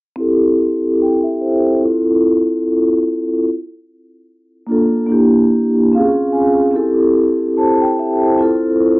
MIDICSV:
0, 0, Header, 1, 2, 480
1, 0, Start_track
1, 0, Tempo, 821918
1, 98, Time_signature, 4, 2, 24, 8
1, 5255, End_track
2, 0, Start_track
2, 0, Title_t, "Vibraphone"
2, 0, Program_c, 0, 11
2, 92, Note_on_c, 0, 60, 89
2, 100, Note_on_c, 0, 64, 80
2, 113, Note_on_c, 0, 67, 81
2, 120, Note_on_c, 0, 69, 101
2, 216, Control_c, 0, 64, 127
2, 575, Note_off_c, 0, 60, 0
2, 579, Note_off_c, 0, 64, 0
2, 585, Note_off_c, 0, 67, 0
2, 589, Note_off_c, 0, 69, 0
2, 595, Note_on_c, 0, 79, 50
2, 718, Note_off_c, 0, 79, 0
2, 720, Note_on_c, 0, 76, 63
2, 725, Note_on_c, 0, 67, 53
2, 815, Note_off_c, 0, 76, 0
2, 817, Note_off_c, 0, 67, 0
2, 824, Note_on_c, 0, 72, 58
2, 825, Note_on_c, 0, 64, 52
2, 952, Note_off_c, 0, 72, 0
2, 953, Note_off_c, 0, 64, 0
2, 970, Note_on_c, 0, 69, 54
2, 973, Note_on_c, 0, 60, 53
2, 1036, Note_off_c, 0, 60, 0
2, 1043, Note_on_c, 0, 60, 73
2, 1052, Note_on_c, 0, 64, 71
2, 1063, Note_on_c, 0, 65, 75
2, 1064, Note_off_c, 0, 69, 0
2, 1065, Control_c, 0, 64, 0
2, 1071, Note_on_c, 0, 69, 92
2, 1177, Control_c, 0, 64, 127
2, 1825, Note_off_c, 0, 60, 0
2, 1830, Note_off_c, 0, 64, 0
2, 1836, Note_off_c, 0, 65, 0
2, 1839, Note_off_c, 0, 69, 0
2, 2026, Control_c, 0, 64, 0
2, 2131, Control_c, 0, 64, 127
2, 2725, Note_on_c, 0, 58, 70
2, 2736, Note_on_c, 0, 62, 67
2, 2744, Note_on_c, 0, 65, 66
2, 2755, Note_on_c, 0, 69, 74
2, 2951, Note_off_c, 0, 58, 0
2, 2958, Note_on_c, 0, 58, 82
2, 2963, Note_off_c, 0, 62, 0
2, 2970, Note_on_c, 0, 62, 71
2, 2977, Note_on_c, 0, 64, 70
2, 2981, Note_off_c, 0, 65, 0
2, 2984, Control_c, 0, 64, 0
2, 2986, Note_off_c, 0, 69, 0
2, 2989, Note_on_c, 0, 67, 91
2, 3073, Control_c, 0, 64, 127
2, 3366, Note_off_c, 0, 58, 0
2, 3372, Note_off_c, 0, 62, 0
2, 3376, Note_off_c, 0, 64, 0
2, 3382, Note_off_c, 0, 67, 0
2, 3460, Note_on_c, 0, 60, 85
2, 3465, Control_c, 0, 64, 0
2, 3471, Note_on_c, 0, 61, 85
2, 3474, Note_on_c, 0, 77, 65
2, 3478, Note_on_c, 0, 65, 72
2, 3488, Note_on_c, 0, 68, 90
2, 3580, Control_c, 0, 64, 127
2, 3690, Note_off_c, 0, 77, 0
2, 3694, Note_on_c, 0, 80, 67
2, 3857, Note_off_c, 0, 60, 0
2, 3863, Note_off_c, 0, 61, 0
2, 3866, Note_off_c, 0, 65, 0
2, 3872, Note_off_c, 0, 68, 0
2, 3919, Note_off_c, 0, 80, 0
2, 3920, Note_on_c, 0, 60, 86
2, 3928, Note_on_c, 0, 64, 80
2, 3935, Note_on_c, 0, 67, 83
2, 3945, Control_c, 0, 64, 0
2, 3948, Note_on_c, 0, 69, 96
2, 4057, Control_c, 0, 64, 127
2, 4173, Note_off_c, 0, 64, 0
2, 4176, Note_off_c, 0, 67, 0
2, 4183, Note_off_c, 0, 69, 0
2, 4424, Note_on_c, 0, 81, 63
2, 4427, Note_on_c, 0, 72, 49
2, 4444, Note_off_c, 0, 60, 0
2, 4552, Note_off_c, 0, 81, 0
2, 4554, Note_off_c, 0, 72, 0
2, 4565, Note_on_c, 0, 79, 70
2, 4657, Note_off_c, 0, 79, 0
2, 4668, Note_on_c, 0, 76, 61
2, 4670, Note_on_c, 0, 67, 58
2, 4794, Note_off_c, 0, 76, 0
2, 4795, Note_off_c, 0, 67, 0
2, 4812, Note_on_c, 0, 72, 59
2, 4814, Note_on_c, 0, 64, 51
2, 4894, Note_off_c, 0, 64, 0
2, 4894, Note_on_c, 0, 60, 70
2, 4901, Note_on_c, 0, 64, 74
2, 4906, Control_c, 0, 64, 0
2, 4910, Note_on_c, 0, 65, 77
2, 4920, Note_on_c, 0, 69, 91
2, 5007, Control_c, 0, 64, 127
2, 5032, Note_off_c, 0, 72, 0
2, 5255, Note_off_c, 0, 60, 0
2, 5255, Note_off_c, 0, 64, 0
2, 5255, Note_off_c, 0, 65, 0
2, 5255, Note_off_c, 0, 69, 0
2, 5255, End_track
0, 0, End_of_file